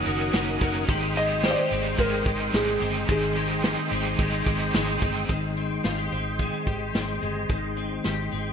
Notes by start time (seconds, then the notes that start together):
Already playing: D#3 A#3 C#4 D#4 A#4 C#5 F#5 D#6
0.05 F#1 D#4 F#4 A#4, ride
0.09 C#4
0.33 F#1 F#3 A#3 C#4 D#4 A#4, snare, ride, tambourine
0.60 F#1 C#4 D#4 A#4, kick, ride
0.65 C#4
0.88 G#1 D#3 G#3 C4 D#4 G4 D#5 C6, kick, ride
1.16 G#3 D#4 G4 D#5, ride
1.20 C4
1.43 G#3 C4 D#4 G4 C5, snare, ride, tambourine
1.50 D5
1.58 C5
1.70 G#1 C4 D#4 G4, ride
1.75 C4
1.98 G#1 G#3 C4 D#4 A#4, kick, ride
2.02 G4
2.25 G#1 D#4 G4, kick, ride
2.30 C4
2.53 G#1 G#3 C4 D#4 G4 G#4, snare, ride, tambourine
2.80 G1 C4 D#4 G4, ride
2.84 C4
3.08 G#1 D#3 G#3 C4 D#4 G4 G#4, kick, ride
3.35 G#3 D#4 G4, ride
3.39 C4
3.63 G#3 C4 D#4 G4, snare, ride, tambourine
3.90 G#1 C4 D#4 G4, ride
3.94 C4
4.17 G#1 G#3 C4 D#4, kick, ride
4.22 G4
4.45 G#1 D#4 G4, kick, ride
4.49 C4
4.73 G#1 G#3 C4 D#4 G4, snare, ride, tambourine
5.01 G1 C4 D#4 G4, kick, ride
5.05 C4
5.28 G#1 D#3 G#3 D#5 G5 C6, kick, closed hi-hat
5.57 C4, closed hi-hat
5.84 G#1 F4, snare, closed hi-hat
5.98 G4
6.12 G#1 C4, closed hi-hat
6.39 G#3, kick, closed hi-hat
6.67 G#1 G4, kick, closed hi-hat
6.94 G#1 C4, snare, closed hi-hat
7.22 G1 G#3, closed hi-hat
7.49 G#1 D#3 G5, kick, closed hi-hat
7.77 C4, closed hi-hat
8.04 G#1 G4, snare, closed hi-hat
8.32 G#1 C4, closed hi-hat